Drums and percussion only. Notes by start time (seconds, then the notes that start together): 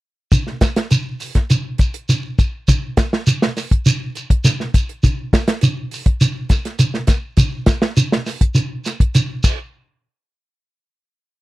0.32 kick, closed hi-hat, shekere
0.47 snare
0.61 kick, snare, closed hi-hat, shekere
0.76 snare, closed hi-hat
0.91 closed hi-hat, shekere
1.20 open hi-hat, shekere
1.35 kick, snare, closed hi-hat
1.50 closed hi-hat, shekere
1.78 kick, closed hi-hat, shekere
1.94 closed hi-hat
2.09 closed hi-hat, shekere
2.39 kick, closed hi-hat, shekere
2.68 kick, closed hi-hat, shekere
2.97 kick, snare, closed hi-hat, shekere
3.13 snare
3.27 closed hi-hat, shekere
3.42 snare
3.57 snare, open hi-hat, shekere
3.71 kick, closed hi-hat
3.86 closed hi-hat, shekere
4.15 closed hi-hat, shekere
4.30 kick, closed hi-hat
4.45 snare, closed hi-hat, shekere
4.60 snare
4.74 kick, closed hi-hat, shekere
4.89 closed hi-hat
5.03 kick, closed hi-hat, shekere
5.33 kick, snare, closed hi-hat, shekere
5.47 snare, closed hi-hat
5.61 closed hi-hat, shekere
5.91 open hi-hat, shekere
6.06 kick, closed hi-hat
6.21 closed hi-hat, shekere
6.49 kick, snare, closed hi-hat, shekere
6.65 snare, closed hi-hat
6.79 closed hi-hat, shekere
6.94 snare
7.07 kick, snare, closed hi-hat, shekere
7.37 kick, closed hi-hat, shekere
7.66 kick, snare, closed hi-hat, shekere
7.82 snare
7.97 closed hi-hat, shekere
8.12 snare
8.26 snare, open hi-hat, shekere
8.41 kick, closed hi-hat
8.55 closed hi-hat, shekere
8.85 snare, closed hi-hat, shekere
9.00 kick, closed hi-hat
9.15 closed hi-hat, shekere
9.44 kick, crash, shekere